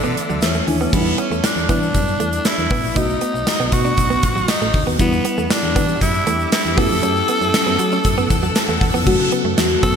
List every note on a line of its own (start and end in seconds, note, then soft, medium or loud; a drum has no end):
0.00 0.42 D3 loud
0.00 0.63 E3 medium
0.00 0.63 A3 medium
0.00 0.14 B3 medium
0.00 0.64 D4 medium
0.00 0.64 E4 medium
0.00 0.89 A4 medium
0.00 0.89 E5 medium
0.00 0.89 D6 medium
0.00 shaker soft
0.04 0.14 B2 medium
0.17 muted clean electric guitar stroke soft
0.17 closed hi-hat medium
0.29 0.39 D2 medium
0.29 0.39 F#3 medium
0.29 shaker soft
0.42 0.61 E2 medium
0.42 0.95 C#4 medium
0.42 0.66 E5 medium
0.42 snare loud
0.42 closed hi-hat medium
0.42 shaker medium
0.54 0.65 A3 medium
0.54 shaker soft
0.66 0.87 D#2 medium
0.66 0.92 E3 medium
0.66 0.93 A3 medium
0.66 0.92 D4 medium
0.66 0.93 E4 medium
0.66 0.91 G#5 medium
0.66 muted clean electric guitar stroke soft
0.66 open hi-hat medium
0.81 0.90 B3 medium
0.81 shaker medium
0.92 1.12 E2 loud
0.92 2.92 G3 medium
0.92 2.92 B3 medium
0.92 1.20 B3 medium
0.92 2.93 D4 medium
0.92 1.00 D#4 medium
0.92 kick loud
0.92 crash medium
0.92 shaker medium
1.00 2.96 E4 medium
1.06 muted clean electric guitar stroke soft
1.06 shaker soft
1.18 1.28 B3 medium
1.18 1.47 C#4 medium
1.18 closed hi-hat medium
1.18 shaker soft
1.31 1.40 E2 loud
1.31 1.41 A3 medium
1.31 shaker soft
1.44 1.70 D4 medium
1.44 snare loud
1.44 closed hi-hat medium
1.44 shaker medium
1.56 1.66 E2 medium
1.56 shaker soft
1.69 1.88 E3 loud
1.69 1.79 B3 medium
1.69 2.48 D4 loud
1.69 kick medium
1.69 closed hi-hat medium
1.69 shaker soft
1.83 shaker soft
1.94 2.14 F#2 medium
1.94 kick medium
1.94 closed hi-hat medium
1.94 shaker medium
2.07 shaker soft
2.20 2.39 E2 medium
2.20 2.30 A3 medium
2.20 closed hi-hat medium
2.20 shaker soft
2.33 closed hi-hat medium
2.33 shaker soft
2.45 2.99 E4 medium
2.45 snare loud
2.45 closed hi-hat medium
2.45 shaker medium
2.58 2.68 E2 medium
2.58 shaker soft
2.70 2.80 A1 medium
2.70 2.81 B3 medium
2.70 kick loud
2.70 open hi-hat medium
2.83 2.93 A#1 medium
2.83 shaker medium
2.95 3.15 B1 loud
2.95 4.95 A3 medium
2.95 4.95 B3 medium
2.95 4.96 D#4 medium
2.95 3.06 D#4 medium
2.95 3.74 D#4 loud
2.95 4.96 F#4 medium
2.95 kick loud
2.95 closed hi-hat medium
2.95 shaker medium
3.09 shaker soft
3.21 3.31 B3 medium
3.21 closed hi-hat medium
3.21 shaker soft
3.34 3.44 B1 medium
3.34 muted clean electric guitar stroke soft
3.34 shaker soft
3.47 snare loud
3.47 closed hi-hat medium
3.47 tambourine medium
3.47 shaker medium
3.60 3.69 B1 loud
3.60 3.70 B3 medium
3.60 shaker soft
3.72 3.92 B2 loud
3.72 4.51 F#4 loud
3.72 muted clean electric guitar stroke soft
3.72 kick loud
3.72 closed hi-hat medium
3.72 shaker soft
3.85 3.95 D4 medium
3.85 shaker soft
3.97 4.17 B1 medium
3.97 kick medium
3.97 closed hi-hat medium
3.97 shaker medium
4.10 4.20 B3 medium
4.10 shaker medium
4.23 4.42 A1 loud
4.23 muted clean electric guitar stroke soft
4.23 kick loud
4.23 closed hi-hat medium
4.23 shaker soft
4.36 4.46 F#3 medium
4.36 shaker soft
4.48 4.85 D#4 loud
4.48 snare loud
4.48 closed hi-hat medium
4.48 tambourine medium
4.48 shaker medium
4.61 4.71 A1 medium
4.61 4.71 A3 medium
4.61 shaker soft
4.74 4.84 D2 medium
4.74 muted clean electric guitar stroke soft
4.74 kick loud
4.74 open hi-hat medium
4.87 4.97 D#2 medium
4.87 4.97 B3 medium
4.87 shaker medium
4.98 5.19 E2 loud
4.98 6.73 G3 medium
4.98 6.74 B3 medium
4.98 5.53 B3 loud
4.98 6.74 D4 medium
4.98 6.74 E4 medium
4.98 6.76 G4 medium
4.98 6.76 E5 medium
4.98 6.76 D6 medium
4.98 kick loud
4.98 closed hi-hat medium
4.98 shaker medium
5.13 muted clean electric guitar stroke soft
5.13 shaker soft
5.25 5.35 B3 medium
5.25 closed hi-hat medium
5.25 shaker soft
5.38 5.47 E2 medium
5.38 5.48 A3 medium
5.38 shaker medium
5.50 6.02 D4 loud
5.50 snare loud
5.50 closed hi-hat medium
5.50 tambourine medium
5.50 shaker medium
5.63 5.77 E2 loud
5.63 shaker soft
5.76 5.95 E3 loud
5.76 5.86 B3 medium
5.76 kick loud
5.76 closed hi-hat medium
5.76 shaker soft
5.88 shaker soft
6.01 6.20 F#2 loud
6.01 6.49 E4 loud
6.01 kick medium
6.01 closed hi-hat medium
6.01 shaker medium
6.14 shaker medium
6.27 6.46 E2 medium
6.27 6.37 A3 medium
6.27 closed hi-hat medium
6.27 shaker soft
6.40 shaker soft
6.52 6.79 E4 loud
6.52 snare loud
6.52 closed hi-hat medium
6.52 tambourine medium
6.52 shaker medium
6.65 6.75 E2 loud
6.65 shaker soft
6.76 6.87 F#2 loud
6.76 8.76 F#3 medium
6.76 8.76 A3 medium
6.76 6.88 B3 medium
6.76 8.77 C#4 medium
6.76 8.77 E4 medium
6.76 9.04 A4 medium
6.76 8.81 A4 loud
6.76 9.04 F#5 medium
6.76 9.04 E6 medium
6.76 kick loud
6.76 open hi-hat medium
6.90 7.00 F2 loud
6.90 shaker medium
7.03 7.22 F#2 loud
7.03 7.13 C#4 medium
7.03 closed hi-hat medium
7.03 shaker medium
7.16 shaker soft
7.28 7.38 B3 medium
7.28 closed hi-hat medium
7.28 shaker soft
7.41 7.51 F#2 loud
7.41 muted clean electric guitar stroke soft
7.41 shaker medium
7.54 snare loud
7.54 closed hi-hat medium
7.54 tambourine medium
7.54 shaker medium
7.67 7.76 F#2 loud
7.67 7.77 B3 medium
7.67 shaker soft
7.79 7.98 F#3 loud
7.79 muted clean electric guitar stroke soft
7.79 closed hi-hat medium
7.79 shaker soft
7.92 8.02 C#4 medium
7.92 shaker soft
8.04 8.24 F#2 loud
8.04 kick medium
8.04 closed hi-hat medium
8.04 shaker medium
8.17 8.27 B3 medium
8.17 shaker medium
8.30 8.49 E2 medium
8.30 muted clean electric guitar stroke soft
8.30 kick loud
8.30 closed hi-hat medium
8.30 shaker soft
8.43 8.53 F#3 medium
8.43 shaker soft
8.55 8.79 A5 medium
8.55 snare loud
8.55 closed hi-hat medium
8.55 tambourine medium
8.55 shaker medium
8.68 8.78 E2 medium
8.68 8.78 A3 medium
8.68 shaker soft
8.81 8.91 E2 medium
8.81 9.04 F#5 medium
8.81 muted clean electric guitar stroke soft
8.81 kick loud
8.81 open hi-hat medium
8.94 9.03 F2 medium
8.94 9.04 B3 medium
8.94 shaker medium
9.05 9.16 F#2 loud
9.05 9.96 C#3 medium
9.05 9.96 F#3 medium
9.05 9.96 A3 medium
9.05 9.96 C#4 medium
9.05 9.96 F#4 medium
9.05 9.96 A4 medium
9.05 9.96 F#5 medium
9.05 9.96 C#6 medium
9.05 kick loud
9.05 crash loud
9.20 muted clean electric guitar stroke soft
9.32 9.42 B3 medium
9.32 closed hi-hat medium
9.44 9.54 F#2 medium
9.44 9.55 A3 medium
9.57 9.76 E2 medium
9.57 snare loud
9.57 closed hi-hat medium
9.57 tambourine medium
9.83 9.96 F#2 loud
9.83 9.93 B3 medium
9.83 9.96 A4 loud
9.83 kick loud
9.83 closed hi-hat medium